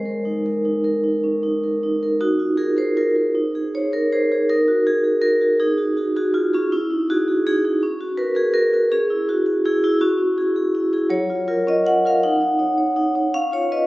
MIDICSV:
0, 0, Header, 1, 2, 480
1, 0, Start_track
1, 0, Tempo, 784314
1, 1352, Tempo, 756620
1, 1353, Time_signature, 6, 3, 24, 8
1, 2792, Tempo, 738007
1, 8898, End_track
2, 0, Start_track
2, 0, Title_t, "Vibraphone"
2, 0, Program_c, 0, 11
2, 0, Note_on_c, 0, 56, 44
2, 0, Note_on_c, 0, 72, 58
2, 26, Control_c, 0, 64, 127
2, 34, Note_on_c, 0, 70, 33
2, 155, Note_on_c, 0, 63, 35
2, 225, Note_off_c, 0, 70, 0
2, 282, Note_on_c, 0, 70, 40
2, 346, Note_off_c, 0, 63, 0
2, 399, Note_on_c, 0, 63, 36
2, 470, Note_off_c, 0, 70, 0
2, 516, Note_on_c, 0, 70, 35
2, 589, Note_off_c, 0, 63, 0
2, 635, Note_on_c, 0, 63, 38
2, 636, Note_off_c, 0, 72, 0
2, 707, Note_off_c, 0, 70, 0
2, 756, Note_on_c, 0, 61, 35
2, 827, Note_off_c, 0, 63, 0
2, 875, Note_off_c, 0, 61, 0
2, 877, Note_on_c, 0, 63, 36
2, 1002, Note_on_c, 0, 70, 34
2, 1068, Note_off_c, 0, 63, 0
2, 1123, Note_on_c, 0, 63, 36
2, 1191, Note_off_c, 0, 70, 0
2, 1241, Note_on_c, 0, 70, 40
2, 1310, Note_off_c, 0, 63, 0
2, 1331, Note_off_c, 0, 56, 0
2, 1351, Note_on_c, 0, 66, 69
2, 1352, Note_on_c, 0, 63, 55
2, 1356, Note_off_c, 0, 70, 0
2, 1364, Control_c, 0, 64, 0
2, 1458, Control_c, 0, 64, 127
2, 1468, Note_on_c, 0, 65, 38
2, 1578, Note_off_c, 0, 65, 0
2, 1584, Note_on_c, 0, 68, 65
2, 1586, Note_on_c, 0, 65, 38
2, 1586, Note_on_c, 0, 70, 43
2, 1593, Note_off_c, 0, 66, 0
2, 1697, Note_off_c, 0, 70, 0
2, 1698, Note_off_c, 0, 65, 0
2, 1706, Note_on_c, 0, 70, 42
2, 1709, Note_off_c, 0, 68, 0
2, 1714, Note_on_c, 0, 72, 71
2, 1828, Note_off_c, 0, 70, 0
2, 1834, Note_off_c, 0, 72, 0
2, 1835, Note_on_c, 0, 70, 74
2, 1836, Note_on_c, 0, 65, 41
2, 1942, Note_off_c, 0, 65, 0
2, 1947, Note_off_c, 0, 70, 0
2, 1950, Note_on_c, 0, 65, 37
2, 1955, Note_on_c, 0, 70, 41
2, 2053, Note_off_c, 0, 63, 0
2, 2061, Note_off_c, 0, 65, 0
2, 2063, Note_off_c, 0, 70, 0
2, 2077, Note_on_c, 0, 63, 53
2, 2086, Control_c, 0, 64, 0
2, 2187, Control_c, 0, 64, 127
2, 2204, Note_on_c, 0, 68, 46
2, 2319, Note_off_c, 0, 68, 0
2, 2327, Note_on_c, 0, 68, 39
2, 2327, Note_on_c, 0, 72, 49
2, 2329, Note_on_c, 0, 73, 77
2, 2430, Note_off_c, 0, 68, 0
2, 2431, Note_off_c, 0, 72, 0
2, 2441, Note_on_c, 0, 72, 42
2, 2443, Note_off_c, 0, 73, 0
2, 2445, Note_on_c, 0, 70, 67
2, 2560, Note_off_c, 0, 70, 0
2, 2560, Note_off_c, 0, 72, 0
2, 2568, Note_on_c, 0, 68, 43
2, 2568, Note_on_c, 0, 72, 80
2, 2682, Note_off_c, 0, 72, 0
2, 2684, Note_off_c, 0, 68, 0
2, 2690, Note_on_c, 0, 72, 45
2, 2691, Note_on_c, 0, 68, 46
2, 2773, Note_off_c, 0, 63, 0
2, 2790, Note_off_c, 0, 68, 0
2, 2790, Note_off_c, 0, 72, 0
2, 2802, Note_on_c, 0, 70, 78
2, 2805, Control_c, 0, 64, 0
2, 2805, Note_on_c, 0, 63, 53
2, 2919, Note_off_c, 0, 70, 0
2, 2923, Note_on_c, 0, 66, 69
2, 2927, Control_c, 0, 64, 127
2, 3036, Note_off_c, 0, 66, 0
2, 3044, Note_on_c, 0, 66, 41
2, 3045, Note_on_c, 0, 68, 80
2, 3149, Note_off_c, 0, 66, 0
2, 3149, Note_off_c, 0, 68, 0
2, 3157, Note_on_c, 0, 68, 44
2, 3272, Note_on_c, 0, 70, 85
2, 3274, Note_on_c, 0, 66, 48
2, 3351, Note_off_c, 0, 68, 0
2, 3392, Note_off_c, 0, 66, 0
2, 3400, Note_on_c, 0, 66, 39
2, 3401, Note_on_c, 0, 68, 50
2, 3506, Note_off_c, 0, 63, 0
2, 3510, Note_off_c, 0, 66, 0
2, 3510, Note_off_c, 0, 68, 0
2, 3519, Note_off_c, 0, 70, 0
2, 3519, Note_on_c, 0, 63, 61
2, 3519, Note_on_c, 0, 68, 80
2, 3535, Control_c, 0, 64, 0
2, 3637, Note_on_c, 0, 66, 49
2, 3656, Control_c, 0, 64, 127
2, 3754, Note_off_c, 0, 66, 0
2, 3760, Note_off_c, 0, 68, 0
2, 3761, Note_on_c, 0, 66, 44
2, 3768, Note_on_c, 0, 68, 45
2, 3873, Note_off_c, 0, 66, 0
2, 3877, Note_off_c, 0, 68, 0
2, 3887, Note_on_c, 0, 68, 46
2, 3890, Note_on_c, 0, 66, 79
2, 3993, Note_off_c, 0, 66, 0
2, 4001, Note_on_c, 0, 66, 51
2, 4003, Note_on_c, 0, 65, 79
2, 4081, Note_off_c, 0, 68, 0
2, 4122, Note_off_c, 0, 66, 0
2, 4127, Note_off_c, 0, 65, 0
2, 4129, Note_on_c, 0, 68, 49
2, 4130, Note_on_c, 0, 66, 48
2, 4135, Note_on_c, 0, 61, 81
2, 4226, Note_off_c, 0, 63, 0
2, 4237, Note_off_c, 0, 68, 0
2, 4238, Note_off_c, 0, 66, 0
2, 4248, Note_off_c, 0, 61, 0
2, 4251, Note_on_c, 0, 64, 81
2, 4256, Note_on_c, 0, 61, 62
2, 4260, Control_c, 0, 64, 0
2, 4348, Control_c, 0, 64, 127
2, 4370, Note_on_c, 0, 63, 46
2, 4489, Note_off_c, 0, 63, 0
2, 4490, Note_off_c, 0, 64, 0
2, 4496, Note_on_c, 0, 63, 46
2, 4497, Note_on_c, 0, 66, 87
2, 4502, Note_on_c, 0, 68, 56
2, 4601, Note_off_c, 0, 63, 0
2, 4604, Note_off_c, 0, 68, 0
2, 4615, Note_on_c, 0, 68, 49
2, 4727, Note_off_c, 0, 68, 0
2, 4732, Note_off_c, 0, 66, 0
2, 4735, Note_on_c, 0, 63, 58
2, 4735, Note_on_c, 0, 68, 92
2, 4843, Note_off_c, 0, 63, 0
2, 4847, Note_off_c, 0, 68, 0
2, 4851, Note_on_c, 0, 63, 46
2, 4855, Note_on_c, 0, 68, 55
2, 4950, Note_off_c, 0, 61, 0
2, 4958, Note_off_c, 0, 63, 0
2, 4960, Note_off_c, 0, 68, 0
2, 4971, Note_on_c, 0, 61, 70
2, 4981, Control_c, 0, 64, 0
2, 5086, Control_c, 0, 64, 127
2, 5086, Note_on_c, 0, 66, 54
2, 5191, Note_off_c, 0, 66, 0
2, 5196, Note_on_c, 0, 71, 88
2, 5199, Note_on_c, 0, 66, 50
2, 5205, Note_on_c, 0, 70, 53
2, 5302, Note_off_c, 0, 70, 0
2, 5310, Note_off_c, 0, 66, 0
2, 5310, Note_on_c, 0, 70, 55
2, 5319, Note_on_c, 0, 68, 75
2, 5321, Note_off_c, 0, 71, 0
2, 5423, Note_off_c, 0, 70, 0
2, 5431, Note_on_c, 0, 66, 57
2, 5431, Note_on_c, 0, 70, 94
2, 5442, Note_off_c, 0, 68, 0
2, 5552, Note_off_c, 0, 66, 0
2, 5555, Note_off_c, 0, 70, 0
2, 5560, Note_on_c, 0, 66, 55
2, 5563, Note_on_c, 0, 70, 57
2, 5664, Note_off_c, 0, 61, 0
2, 5669, Note_off_c, 0, 66, 0
2, 5671, Note_off_c, 0, 70, 0
2, 5678, Note_on_c, 0, 68, 94
2, 5679, Note_on_c, 0, 61, 68
2, 5693, Control_c, 0, 64, 0
2, 5798, Control_c, 0, 64, 127
2, 5801, Note_on_c, 0, 64, 55
2, 5911, Note_off_c, 0, 64, 0
2, 5919, Note_off_c, 0, 68, 0
2, 5919, Note_on_c, 0, 64, 52
2, 5921, Note_on_c, 0, 66, 82
2, 6023, Note_off_c, 0, 66, 0
2, 6027, Note_off_c, 0, 64, 0
2, 6031, Note_on_c, 0, 66, 60
2, 6158, Note_on_c, 0, 64, 60
2, 6160, Note_on_c, 0, 68, 95
2, 6227, Note_off_c, 0, 66, 0
2, 6270, Note_off_c, 0, 64, 0
2, 6278, Note_on_c, 0, 64, 91
2, 6279, Note_off_c, 0, 68, 0
2, 6279, Note_on_c, 0, 66, 58
2, 6374, Note_off_c, 0, 61, 0
2, 6382, Note_off_c, 0, 66, 0
2, 6389, Note_on_c, 0, 66, 95
2, 6392, Note_on_c, 0, 61, 73
2, 6397, Note_off_c, 0, 64, 0
2, 6408, Control_c, 0, 64, 0
2, 6498, Control_c, 0, 64, 127
2, 6500, Note_on_c, 0, 64, 58
2, 6621, Note_off_c, 0, 64, 0
2, 6629, Note_on_c, 0, 64, 57
2, 6629, Note_on_c, 0, 68, 59
2, 6738, Note_off_c, 0, 64, 0
2, 6738, Note_off_c, 0, 68, 0
2, 6748, Note_on_c, 0, 68, 50
2, 6869, Note_on_c, 0, 64, 60
2, 6941, Note_off_c, 0, 68, 0
2, 6980, Note_off_c, 0, 64, 0
2, 6988, Note_on_c, 0, 64, 56
2, 6991, Note_on_c, 0, 68, 59
2, 7087, Note_off_c, 0, 61, 0
2, 7097, Note_off_c, 0, 64, 0
2, 7097, Note_on_c, 0, 54, 74
2, 7099, Note_off_c, 0, 68, 0
2, 7101, Note_on_c, 0, 73, 98
2, 7107, Note_off_c, 0, 66, 0
2, 7124, Control_c, 0, 64, 0
2, 7227, Note_on_c, 0, 65, 51
2, 7247, Control_c, 0, 64, 127
2, 7336, Note_off_c, 0, 65, 0
2, 7344, Note_on_c, 0, 65, 57
2, 7346, Note_on_c, 0, 70, 64
2, 7456, Note_off_c, 0, 65, 0
2, 7457, Note_off_c, 0, 70, 0
2, 7467, Note_off_c, 0, 73, 0
2, 7470, Note_on_c, 0, 61, 58
2, 7478, Note_on_c, 0, 75, 95
2, 7592, Note_on_c, 0, 65, 54
2, 7596, Note_off_c, 0, 75, 0
2, 7596, Note_on_c, 0, 78, 115
2, 7664, Note_off_c, 0, 61, 0
2, 7710, Note_off_c, 0, 65, 0
2, 7715, Note_off_c, 0, 78, 0
2, 7717, Note_on_c, 0, 65, 55
2, 7723, Note_on_c, 0, 70, 63
2, 7729, Note_on_c, 0, 77, 96
2, 7805, Note_off_c, 0, 54, 0
2, 7824, Note_off_c, 0, 65, 0
2, 7827, Note_off_c, 0, 70, 0
2, 7836, Note_on_c, 0, 78, 102
2, 7838, Note_on_c, 0, 63, 76
2, 7841, Note_off_c, 0, 77, 0
2, 7844, Control_c, 0, 64, 0
2, 7939, Note_off_c, 0, 63, 0
2, 7946, Control_c, 0, 64, 127
2, 7947, Note_on_c, 0, 63, 61
2, 8060, Note_off_c, 0, 63, 0
2, 8067, Note_on_c, 0, 63, 55
2, 8072, Note_on_c, 0, 73, 57
2, 8177, Note_off_c, 0, 63, 0
2, 8180, Note_off_c, 0, 73, 0
2, 8189, Note_on_c, 0, 73, 56
2, 8310, Note_on_c, 0, 63, 59
2, 8382, Note_off_c, 0, 73, 0
2, 8426, Note_off_c, 0, 63, 0
2, 8433, Note_on_c, 0, 63, 52
2, 8434, Note_on_c, 0, 73, 58
2, 8541, Note_off_c, 0, 63, 0
2, 8541, Note_off_c, 0, 73, 0
2, 8553, Note_off_c, 0, 78, 0
2, 8557, Note_on_c, 0, 77, 108
2, 8558, Note_on_c, 0, 61, 67
2, 8564, Control_c, 0, 64, 0
2, 8672, Control_c, 0, 64, 127
2, 8673, Note_on_c, 0, 65, 51
2, 8675, Note_off_c, 0, 77, 0
2, 8680, Note_on_c, 0, 73, 93
2, 8794, Note_off_c, 0, 65, 0
2, 8798, Note_off_c, 0, 73, 0
2, 8802, Note_on_c, 0, 65, 48
2, 8802, Note_on_c, 0, 71, 57
2, 8803, Note_on_c, 0, 75, 92
2, 8898, Note_off_c, 0, 61, 0
2, 8898, Note_off_c, 0, 65, 0
2, 8898, Note_off_c, 0, 71, 0
2, 8898, Note_off_c, 0, 75, 0
2, 8898, End_track
0, 0, End_of_file